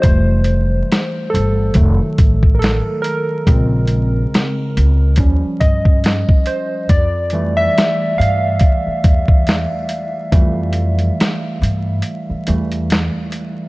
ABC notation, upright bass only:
X:1
M:4/4
L:1/16
Q:"Swing 16ths" 1/4=70
K:F
V:1 name="Upright bass" clef=bass
F,,,4 z2 G,,,2 F,,, z A,,,3 z3 | B,,,4 z2 _D,,2 _E,, z G,,3 z3 | F,,4 z2 G,,2 z2 E,,3 z3 | F,,4 z2 G,,2 z2 E,,3 z3 |]